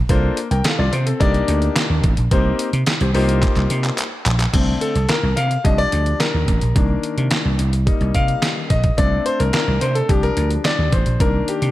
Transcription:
0.09 C2 A#3 D4 F4 A4 C5, kick, closed hi-hat
0.37 closed hi-hat
0.51 C2 A#4 G5, closed hi-hat
0.64 A4 F5, snare, clap, closed hi-hat
0.79 C2 F4 D5
0.92 C3 C5, closed hi-hat
1.06 C4 A4, closed hi-hat
1.20 C2 A#3 D4 D#4 G4 D5, kick, closed hi-hat
1.34 closed hi-hat
1.48 D2, closed hi-hat
1.62 closed hi-hat
1.76 snare, clap, closed hi-hat
1.90 D#2
2.04 A1, kick, closed hi-hat
2.17 A#1, closed hi-hat
2.31 C2 A#3 C4 D#4 G4 C5, kick, closed hi-hat
2.59 closed hi-hat
2.73 C3, closed hi-hat
2.86 snare, clap, closed hi-hat
3.01 C2 G4 C5, closed hi-hat
3.14 C2 A#3 D#4 F4 G4 C5, open hi-hat
3.29 closed hi-hat
3.43 kick, clap, closed hi-hat
3.56 C2, clap, closed hi-hat
3.70 C3, closed hi-hat
3.84 clap, closed hi-hat
3.98 clap, closed hi-hat
4.26 A#1, clap, closed hi-hat
4.39 clap, closed hi-hat
4.53 C2 D3 A3 C4, kick, closed hi-hat, crash
4.81 A4, closed hi-hat
4.95 C2, closed hi-hat
5.09 A#4, snare, clap, closed hi-hat
5.23 C2
5.37 C3 F5, closed hi-hat
5.51 closed hi-hat
5.64 C2 F3 G3 D4 D#5, kick, closed hi-hat
5.78 D5, closed hi-hat
5.92 D2, closed hi-hat
6.06 closed hi-hat
6.20 A#4, snare, clap, closed hi-hat
6.34 D#2
6.48 A1, kick, closed hi-hat
6.61 A#1, closed hi-hat
6.75 C2 D#3 A#3 D4, kick, closed hi-hat
7.03 closed hi-hat
7.18 C3, closed hi-hat
7.31 snare, clap, closed hi-hat
7.45 C2
7.59 C2, closed hi-hat
7.73 closed hi-hat
7.86 G3 A#3 D#4, kick, closed hi-hat
8.01 C2, closed hi-hat
8.14 C3 F5, kick, closed hi-hat
8.28 closed hi-hat
8.42 snare, clap, closed hi-hat
8.70 A#1 D#5, kick, closed hi-hat
8.84 kick, closed hi-hat
8.97 C2 A3 C4 D4 D5, kick, closed hi-hat
9.26 C5, closed hi-hat
9.40 C2 A#4, closed hi-hat
9.53 A#4, snare, clap, closed hi-hat
9.68 C2
9.81 C3 C5, closed hi-hat
9.95 A4, closed hi-hat
10.08 C2 F3 G3 D4 G4, kick, closed hi-hat
10.23 A#4, closed hi-hat
10.37 D2, closed hi-hat
10.51 closed hi-hat
10.65 D5, snare, clap, closed hi-hat
10.79 D#2
10.92 A1 C5, kick, closed hi-hat
11.06 A#1, closed hi-hat
11.20 C2 D#3 A#3 D4 A#4, kick, closed hi-hat
11.48 G4, closed hi-hat
11.62 C3, closed hi-hat

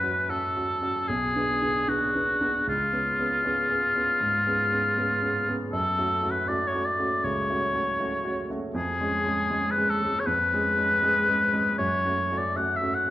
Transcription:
Already playing: F#2 C#4 F#4 B4
0.04 C#4 F#4
0.29 C#4 F#4 A4
0.57 C#4 F#4
0.82 C#4 F#4
1.08 B1 G#4
1.35 B3 D4 G#4
1.62 B3 D4 G#4
1.88 B3 D4 F#4 G#4
2.15 B3 D4 G#4
2.41 B3 D4 G#4
2.67 C#2 F4
2.93 B3 C#4 G#4
3.19 B3 C#4 G#4
3.45 B3 C#4 G#4
3.70 B3 C#4 G#4
3.95 B3 C#4 G#4
4.20 G#2
4.46 B3 C#4 G#4
4.72 B3 C#4 G#4
4.97 B3 C#4 G#4
5.22 B3 C#4 G#4
5.48 B3 C#4 G#4
5.73 F#2 A4
5.98 A3 C#4 F#4
6.23 A3 C#4 F#4
6.31 B4
6.48 A3 C#4 F#4 D5
6.68 C#5
6.74 A3 C#4 F#4
6.85 D5
6.99 A3 C#4 F#4
7.24 C#2 C#5
7.50 A3 C#4 F#4
7.73 A3 C#4 F#4
8.00 A3 C#4 F#4
8.25 A3 C#4 F#4
8.50 A3 C#4 F#4
8.74 F2 G#4
9.01 G#3 C#4 G#4
9.25 G#3 C#4 G#4
9.51 G#3 C#4 G#4
9.71 B4
9.78 G#3 C#4 G#4
9.90 A4
10.02 G#3 C#4 G#4
10.20 C#5
10.26 F2 B4
10.54 G#3 C#4 G#4
10.78 G#3 C#4 G#4
11.03 G#3 C#4 G#4
11.28 G#3 C#4 G#4
11.53 G#3 C#4 G#4
11.79 F#2 C#5
12.05 A3 C#4 F#4
12.32 A3 C#4 F#4
12.38 D5
12.56 A3 C#4 F#4 F#5
12.76 E5
12.81 A3 C#4 F#4
12.94 F#5

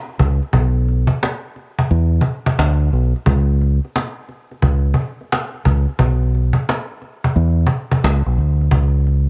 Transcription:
0.08 cajon slap
0.19 C#2, cajon bass
0.43 cajon slap
0.53 B1, cajon bass
0.88 cajon slap
1.07 cajon bass
1.23 cajon slap
1.56 cajon slap
1.79 cajon bass
1.91 E2, cajon slap
2.21 cajon bass, cajon slap
2.46 cajon bass
2.59 D2, cajon slap
2.80 cajon slap
2.93 B1, cajon slap
3.16 cajon slap
3.26 C#2, cajon bass
3.61 cajon slap
3.85 cajon slap
3.96 cajon slap
4.29 cajon slap
4.51 cajon slap
4.62 C#2, cajon bass
4.94 cajon bass
5.21 cajon slap
5.32 cajon slap
5.54 cajon slap
5.65 C#2, cajon bass
5.89 cajon slap
5.99 B1, cajon bass
6.23 cajon slap
6.35 cajon slap
6.53 cajon bass
6.69 cajon slap
6.91 cajon slap
7.02 cajon slap
7.24 cajon bass
7.36 E2, cajon slap
7.67 cajon bass
7.71 cajon slap
7.92 cajon bass
8.04 C#2, cajon slap
8.26 B1, cajon slap
8.38 D2, cajon slap
8.61 cajon slap
8.71 C#2, cajon bass
9.07 cajon slap

